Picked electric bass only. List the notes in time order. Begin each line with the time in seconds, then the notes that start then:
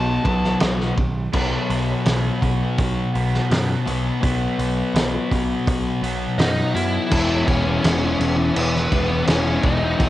Already playing: B1
0.25 B1
0.62 B1
0.97 B1
1.33 B1
1.70 B1
2.06 B1
2.42 B1
2.78 B1
3.15 B1
3.51 F#2
3.87 B1
4.23 B1
4.59 B1
4.94 B1
5.31 B1
5.67 B1
6.02 B1
6.38 F#2
6.75 F#2
7.12 E1
7.47 E1
7.84 E1
8.19 E1
8.56 E1
8.91 E1
9.28 E1
9.64 E1
9.99 E1